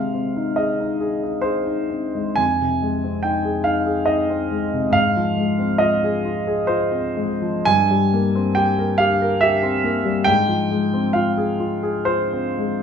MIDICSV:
0, 0, Header, 1, 2, 480
1, 0, Start_track
1, 0, Tempo, 865801
1, 799, Tempo, 943396
1, 1279, Time_signature, 3, 2, 24, 8
1, 1279, Tempo, 857143
1, 3679, Tempo, 991736
1, 4159, Tempo, 903614
1, 4639, Tempo, 864553
1, 6079, Tempo, 903614
1, 6559, Tempo, 1048951
1, 6909, End_track
2, 0, Start_track
2, 0, Title_t, "Grand piano"
2, 0, Program_c, 0, 0
2, 0, Control_c, 0, 64, 127
2, 0, Note_on_c, 0, 48, 47
2, 0, Note_on_c, 0, 56, 32
2, 0, Note_on_c, 0, 77, 67
2, 78, Note_on_c, 0, 60, 36
2, 150, Note_off_c, 0, 56, 0
2, 201, Note_on_c, 0, 63, 35
2, 269, Note_off_c, 0, 60, 0
2, 311, Note_on_c, 0, 75, 55
2, 313, Note_off_c, 0, 77, 0
2, 322, Note_on_c, 0, 68, 36
2, 392, Note_off_c, 0, 63, 0
2, 445, Note_on_c, 0, 63, 36
2, 513, Note_off_c, 0, 68, 0
2, 557, Note_on_c, 0, 68, 41
2, 634, Note_off_c, 0, 63, 0
2, 684, Note_on_c, 0, 63, 41
2, 750, Note_off_c, 0, 68, 0
2, 784, Note_on_c, 0, 72, 65
2, 794, Note_on_c, 0, 68, 37
2, 796, Note_off_c, 0, 75, 0
2, 869, Note_off_c, 0, 63, 0
2, 914, Note_on_c, 0, 63, 36
2, 983, Note_off_c, 0, 68, 0
2, 1033, Note_on_c, 0, 60, 35
2, 1110, Note_off_c, 0, 63, 0
2, 1160, Note_on_c, 0, 56, 34
2, 1230, Note_off_c, 0, 60, 0
2, 1259, Note_off_c, 0, 48, 0
2, 1264, Note_on_c, 0, 80, 86
2, 1272, Note_off_c, 0, 72, 0
2, 1274, Note_on_c, 0, 41, 42
2, 1279, Note_off_c, 0, 56, 0
2, 1290, Control_c, 0, 64, 0
2, 1393, Control_c, 0, 64, 127
2, 1405, Note_on_c, 0, 48, 36
2, 1522, Note_on_c, 0, 56, 34
2, 1595, Note_off_c, 0, 48, 0
2, 1645, Note_on_c, 0, 60, 35
2, 1710, Note_off_c, 0, 56, 0
2, 1749, Note_off_c, 0, 80, 0
2, 1750, Note_on_c, 0, 79, 68
2, 1759, Note_on_c, 0, 63, 38
2, 1828, Note_off_c, 0, 60, 0
2, 1876, Note_on_c, 0, 68, 38
2, 1944, Note_off_c, 0, 63, 0
2, 1982, Note_on_c, 0, 77, 71
2, 1987, Note_off_c, 0, 79, 0
2, 1991, Note_on_c, 0, 63, 41
2, 2064, Note_off_c, 0, 68, 0
2, 2106, Note_on_c, 0, 68, 42
2, 2184, Note_off_c, 0, 63, 0
2, 2215, Note_on_c, 0, 75, 67
2, 2227, Note_on_c, 0, 63, 38
2, 2228, Note_off_c, 0, 77, 0
2, 2304, Note_off_c, 0, 68, 0
2, 2350, Note_on_c, 0, 60, 40
2, 2425, Note_off_c, 0, 63, 0
2, 2471, Note_on_c, 0, 56, 36
2, 2546, Note_off_c, 0, 60, 0
2, 2593, Note_on_c, 0, 48, 40
2, 2666, Note_off_c, 0, 56, 0
2, 2690, Note_on_c, 0, 44, 52
2, 2691, Note_off_c, 0, 41, 0
2, 2702, Note_on_c, 0, 77, 88
2, 2707, Note_off_c, 0, 75, 0
2, 2714, Note_off_c, 0, 48, 0
2, 2726, Control_c, 0, 64, 0
2, 2816, Control_c, 0, 64, 127
2, 2834, Note_on_c, 0, 53, 40
2, 2951, Note_on_c, 0, 56, 38
2, 3024, Note_off_c, 0, 53, 0
2, 3072, Note_on_c, 0, 60, 41
2, 3142, Note_off_c, 0, 56, 0
2, 3183, Note_off_c, 0, 77, 0
2, 3183, Note_on_c, 0, 75, 74
2, 3192, Note_on_c, 0, 65, 44
2, 3263, Note_off_c, 0, 60, 0
2, 3326, Note_on_c, 0, 68, 47
2, 3384, Note_off_c, 0, 65, 0
2, 3445, Note_on_c, 0, 65, 44
2, 3512, Note_off_c, 0, 68, 0
2, 3568, Note_on_c, 0, 68, 49
2, 3635, Note_off_c, 0, 65, 0
2, 3674, Note_off_c, 0, 75, 0
2, 3680, Note_on_c, 0, 72, 72
2, 3689, Note_on_c, 0, 65, 46
2, 3751, Note_off_c, 0, 68, 0
2, 3799, Note_on_c, 0, 60, 44
2, 3868, Note_off_c, 0, 65, 0
2, 3921, Note_on_c, 0, 56, 42
2, 3993, Note_off_c, 0, 60, 0
2, 4041, Note_on_c, 0, 53, 43
2, 4114, Note_off_c, 0, 56, 0
2, 4127, Note_off_c, 0, 44, 0
2, 4155, Note_on_c, 0, 80, 106
2, 4158, Note_off_c, 0, 72, 0
2, 4159, Note_off_c, 0, 53, 0
2, 4165, Note_on_c, 0, 43, 56
2, 4168, Control_c, 0, 64, 0
2, 4245, Control_c, 0, 64, 127
2, 4289, Note_on_c, 0, 55, 41
2, 4410, Note_on_c, 0, 58, 44
2, 4477, Note_off_c, 0, 55, 0
2, 4526, Note_on_c, 0, 60, 47
2, 4594, Note_off_c, 0, 58, 0
2, 4630, Note_on_c, 0, 79, 77
2, 4636, Note_off_c, 0, 80, 0
2, 4641, Note_on_c, 0, 67, 46
2, 4713, Note_off_c, 0, 60, 0
2, 4762, Note_on_c, 0, 70, 50
2, 4832, Note_off_c, 0, 67, 0
2, 4868, Note_on_c, 0, 77, 88
2, 4874, Note_off_c, 0, 79, 0
2, 4879, Note_on_c, 0, 67, 47
2, 4950, Note_off_c, 0, 70, 0
2, 5001, Note_on_c, 0, 70, 54
2, 5067, Note_off_c, 0, 67, 0
2, 5106, Note_on_c, 0, 76, 87
2, 5109, Note_off_c, 0, 77, 0
2, 5118, Note_on_c, 0, 67, 51
2, 5186, Note_off_c, 0, 70, 0
2, 5229, Note_on_c, 0, 60, 50
2, 5305, Note_off_c, 0, 67, 0
2, 5346, Note_on_c, 0, 58, 46
2, 5422, Note_off_c, 0, 60, 0
2, 5464, Note_on_c, 0, 55, 44
2, 5542, Note_off_c, 0, 58, 0
2, 5571, Note_on_c, 0, 79, 103
2, 5575, Note_off_c, 0, 43, 0
2, 5582, Note_on_c, 0, 44, 58
2, 5589, Note_off_c, 0, 55, 0
2, 5589, Note_off_c, 0, 76, 0
2, 5603, Control_c, 0, 64, 0
2, 5695, Control_c, 0, 64, 127
2, 5705, Note_on_c, 0, 53, 43
2, 5830, Note_on_c, 0, 56, 46
2, 5903, Note_off_c, 0, 53, 0
2, 5954, Note_on_c, 0, 60, 48
2, 6026, Note_off_c, 0, 56, 0
2, 6064, Note_on_c, 0, 77, 72
2, 6067, Note_off_c, 0, 79, 0
2, 6075, Note_on_c, 0, 65, 47
2, 6147, Note_off_c, 0, 60, 0
2, 6194, Note_on_c, 0, 68, 45
2, 6263, Note_off_c, 0, 65, 0
2, 6314, Note_on_c, 0, 65, 46
2, 6383, Note_off_c, 0, 68, 0
2, 6435, Note_on_c, 0, 68, 52
2, 6508, Note_off_c, 0, 65, 0
2, 6551, Note_off_c, 0, 77, 0
2, 6553, Note_on_c, 0, 72, 77
2, 6563, Note_on_c, 0, 65, 46
2, 6626, Note_off_c, 0, 68, 0
2, 6681, Note_on_c, 0, 60, 45
2, 6747, Note_off_c, 0, 65, 0
2, 6797, Note_on_c, 0, 56, 44
2, 6874, Note_off_c, 0, 60, 0
2, 6909, Note_off_c, 0, 44, 0
2, 6909, Note_off_c, 0, 56, 0
2, 6909, Note_off_c, 0, 72, 0
2, 6909, End_track
0, 0, End_of_file